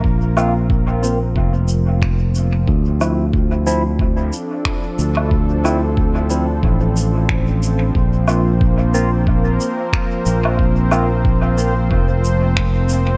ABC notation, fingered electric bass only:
X:1
M:4/4
L:1/8
Q:"Swing 16ths" 1/4=91
K:Dm
V:1 name="Fingered electric bass" clef=bass
B,,,4 F,,,4 | D,,4- D,, z2 D,,- | D,,4 A,,,4 | B,,,4- B,,, z2 B,,,- |
B,,,4 F,,,4 |]